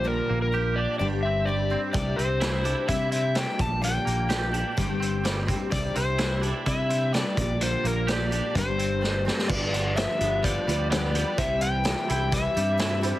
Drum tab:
CC |----------------|----------------|----------------|----------------|
HH |----------------|x-x-x-x-x-x-x-x-|x-x-x-x-x-x-x-x-|x-x-x-x-x-x-x-x-|
SD |----------------|----o-------o---|----o-------o---|----o-------o---|
BD |----------------|o-------o-----o-|--------o-----o-|o-------o-----o-|

CC |----------------|x---------------|----------------|
HH |x-x-x-x-x-x-----|--x-x-x-x-x-x-x-|x-x-x-x-x-x-x-x-|
SD |----o-------o-oo|----o-------o---|----o-------o---|
BD |--------o-------|o-------o-------|o-------o-------|